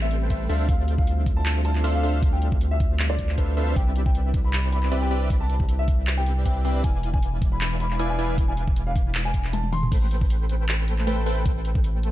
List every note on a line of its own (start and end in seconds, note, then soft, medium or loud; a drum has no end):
0.00 0.48 A1 medium
0.00 3.72 G3 medium
0.00 0.28 A3 medium
0.00 0.47 A3 medium
0.00 3.72 C4 medium
0.00 0.47 G4 medium
0.00 0.28 A4 medium
0.00 0.28 B4 medium
0.00 0.28 C5 medium
0.00 0.22 E5 medium
0.00 0.28 G5 loud
0.11 closed hi-hat medium
0.30 0.47 A3 medium
0.30 0.47 A4 medium
0.30 0.47 B4 medium
0.30 0.47 C5 medium
0.30 0.44 E5 medium
0.30 0.47 G5 medium
0.30 kick medium
0.30 closed hi-hat medium
0.49 3.75 D2 medium
0.49 0.67 D4 medium
0.49 9.88 D4 medium
0.49 3.73 F4 medium
0.49 0.67 A4 medium
0.49 0.67 C5 medium
0.49 0.63 E5 medium
0.49 0.67 E5 medium
0.49 0.67 F5 loud
0.49 open hi-hat medium
0.69 1.82 D4 medium
0.69 1.82 A4 medium
0.69 1.82 E5 medium
0.69 0.89 F5 loud
0.69 kick loud
0.69 closed hi-hat medium
0.88 closed hi-hat medium
0.98 1.24 F5 loud
0.98 kick loud
1.07 closed hi-hat medium
1.26 kick loud
1.26 closed hi-hat medium
1.37 1.57 A5 loud
1.46 clap loud
1.46 closed hi-hat medium
1.65 1.85 A5 loud
1.65 closed hi-hat medium
1.75 clap soft
1.84 2.01 D4 medium
1.84 2.01 A4 medium
1.84 2.01 C5 medium
1.84 2.01 E5 medium
1.84 2.01 F5 medium
1.84 closed hi-hat medium
1.94 2.20 F5 loud
2.03 2.20 D4 medium
2.03 2.20 A4 medium
2.03 2.20 C5 medium
2.03 2.20 E5 medium
2.03 2.20 F5 medium
2.03 open hi-hat medium
2.22 3.36 D4 medium
2.22 3.36 A4 medium
2.22 3.36 C5 medium
2.22 3.36 E5 medium
2.22 3.36 F5 medium
2.22 kick loud
2.22 closed hi-hat medium
2.33 2.59 G5 medium
2.42 closed hi-hat medium
2.52 kick loud
2.61 closed hi-hat medium
2.71 2.97 E5 medium
2.80 kick loud
2.80 closed hi-hat medium
2.99 clap loud
2.99 closed hi-hat medium
3.10 3.30 D5 loud
3.19 kick medium
3.19 closed hi-hat medium
3.29 clap soft
3.38 3.55 D4 medium
3.38 3.55 A4 medium
3.38 3.52 B4 medium
3.38 3.55 C5 medium
3.38 3.55 E5 medium
3.38 3.55 F5 medium
3.38 kick medium
3.38 closed hi-hat medium
3.57 3.74 D4 medium
3.57 3.74 A4 medium
3.57 3.71 B4 medium
3.57 3.74 C5 medium
3.57 3.74 E5 medium
3.57 3.74 F5 medium
3.57 open hi-hat medium
3.76 6.82 C2 medium
3.76 6.81 C3 medium
3.76 4.90 C4 medium
3.76 6.81 E4 medium
3.76 4.90 G4 medium
3.76 6.81 B4 medium
3.76 4.90 D5 medium
3.76 3.96 G5 loud
3.76 kick loud
3.76 closed hi-hat medium
3.96 closed hi-hat medium
4.06 4.32 G5 loud
4.06 kick loud
4.15 closed hi-hat medium
4.34 kick loud
4.34 closed hi-hat medium
4.44 4.64 B5 medium
4.53 clap loud
4.53 closed hi-hat medium
4.72 4.92 B5 medium
4.72 closed hi-hat medium
4.83 clap soft
4.92 5.09 C4 medium
4.92 5.09 G4 medium
4.92 5.09 B4 medium
4.92 5.09 D5 medium
4.92 5.09 E5 medium
4.92 closed hi-hat medium
5.02 5.28 G5 loud
5.11 5.28 C4 medium
5.11 5.28 G4 medium
5.11 5.28 B4 medium
5.11 5.28 D5 medium
5.11 5.28 E5 loud
5.11 open hi-hat medium
5.30 6.43 C4 medium
5.30 6.43 G4 medium
5.30 6.43 B4 medium
5.30 6.43 D5 medium
5.30 6.43 E5 medium
5.30 kick loud
5.30 closed hi-hat medium
5.41 5.67 A5 medium
5.50 closed hi-hat medium
5.60 kick loud
5.69 closed hi-hat medium
5.79 6.05 E5 loud
5.88 kick loud
5.88 closed hi-hat medium
6.07 clap loud
6.07 closed hi-hat medium
6.17 6.37 G5 loud
6.26 closed hi-hat medium
6.46 6.63 C4 medium
6.46 6.63 G4 medium
6.46 6.63 B4 medium
6.46 6.63 D5 medium
6.46 6.63 E5 medium
6.46 6.59 G5 medium
6.46 kick medium
6.46 closed hi-hat medium
6.65 6.82 C4 medium
6.65 6.82 G4 medium
6.65 6.82 B4 medium
6.65 6.82 D5 medium
6.65 6.82 E5 loud
6.65 6.79 G5 medium
6.65 open hi-hat medium
6.84 9.90 E1 medium
6.84 9.89 E3 medium
6.84 9.89 G#3 medium
6.84 7.97 E4 medium
6.84 7.97 D5 medium
6.84 7.04 G#5 loud
6.84 7.97 G#5 medium
6.84 kick loud
6.84 closed hi-hat medium
7.03 closed hi-hat medium
7.14 7.40 G#5 loud
7.14 kick loud
7.23 closed hi-hat medium
7.42 kick loud
7.42 closed hi-hat medium
7.52 7.72 B5 loud
7.61 clap loud
7.61 closed hi-hat medium
7.80 8.00 B5 loud
7.80 closed hi-hat medium
7.91 clap soft
7.99 8.17 E4 medium
7.99 8.17 B4 medium
7.99 8.17 D5 medium
7.99 8.17 F5 medium
7.99 8.17 G#5 medium
7.99 closed hi-hat medium
8.10 8.36 G#5 loud
8.19 8.36 E4 medium
8.19 8.36 B4 medium
8.19 8.36 D5 medium
8.19 8.36 F5 medium
8.19 8.36 G#5 loud
8.19 open hi-hat medium
8.38 9.51 E4 medium
8.38 9.51 B4 medium
8.38 9.51 D5 medium
8.38 9.51 F5 medium
8.38 9.51 G#5 loud
8.38 kick loud
8.38 closed hi-hat medium
8.48 8.74 G#5 loud
8.57 closed hi-hat medium
8.68 kick loud
8.76 closed hi-hat medium
8.87 9.13 F5 loud
8.96 kick loud
8.96 closed hi-hat medium
9.15 clap loud
9.15 closed hi-hat medium
9.25 9.45 G#5 loud
9.34 kick medium
9.34 closed hi-hat medium
9.45 clap soft
9.53 9.67 A5 medium
9.53 closed hi-hat medium
9.53 high tom medium
9.64 high tom medium
9.72 9.86 C6 medium
9.72 open hi-hat medium
9.72 mid tom medium
9.83 mid tom medium
9.92 12.12 A1 medium
9.92 11.05 A3 medium
9.92 11.05 A4 medium
9.92 11.05 B4 medium
9.92 11.05 C5 medium
9.92 11.05 G5 loud
9.92 kick loud
9.92 closed hi-hat medium
9.92 crash loud
10.11 closed hi-hat medium
10.21 kick loud
10.30 closed hi-hat medium
10.49 closed hi-hat medium
10.69 clap loud
10.69 closed hi-hat medium
10.88 closed hi-hat medium
10.98 clap soft
11.07 11.24 A3 medium
11.07 11.24 A4 medium
11.07 11.24 B4 medium
11.07 11.24 C5 medium
11.07 11.24 G5 medium
11.07 closed hi-hat medium
11.26 11.43 A3 medium
11.26 11.43 A4 medium
11.26 11.43 B4 medium
11.26 11.43 C5 medium
11.26 11.43 G5 loud
11.26 open hi-hat medium
11.45 12.12 A3 medium
11.45 12.12 A4 medium
11.45 12.12 B4 medium
11.45 12.12 C5 medium
11.45 12.12 G5 medium
11.45 kick loud
11.45 closed hi-hat medium
11.65 closed hi-hat medium
11.75 kick loud
11.84 closed hi-hat medium
12.03 closed hi-hat medium